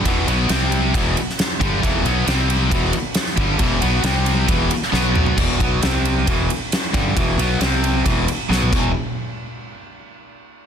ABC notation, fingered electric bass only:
X:1
M:4/4
L:1/8
Q:1/4=135
K:Em
V:1 name="Fingered electric bass" clef=bass
E,,, B,,, C,,2 E,,, z2 G,,, | E,,, B,,, C,,2 E,,, z2 G,,, | E,,, B,,, C,,2 E,,, z B,,,2 | E,,, B,,, C,,2 E,,, z2 G,,, |
E,,, B,,, C,,2 E,,, z B,,, E,,, | z8 |]